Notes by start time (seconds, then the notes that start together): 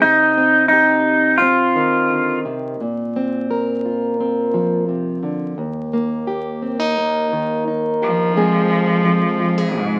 Already playing: C4
0.02 C3 D#4
0.37 C4
0.68 D#4
0.73 G4
1.38 F4
1.42 C4
1.76 D#3
2.10 D3
2.45 C3
2.81 A#2
3.16 C4
3.51 A#4
3.86 F4
4.20 C4
4.54 F3
4.89 C3
5.23 D3
5.58 D#2
5.93 A#3
6.27 G4
6.62 C4
6.80 D#4
6.98 A#3
7.33 D#3
7.68 D#4
8.02 F3 G4
8.36 F2 G#3 C4 G#4
8.71 G#4
9.05 F3 C4
9.40 F4
9.58 G#4
9.75 G#2 C3 G#3